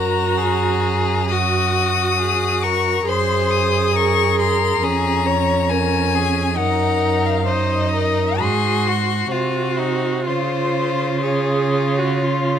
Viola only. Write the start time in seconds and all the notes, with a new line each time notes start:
Already playing: F#4
1.30 F#4
3.07 G#4
4.82 C#4
5.70 C#4
6.57 D#4
7.46 D#4
8.40 F#4
9.31 F#4
10.27 F4
11.24 G#4
11.98 F#4
12.22 F4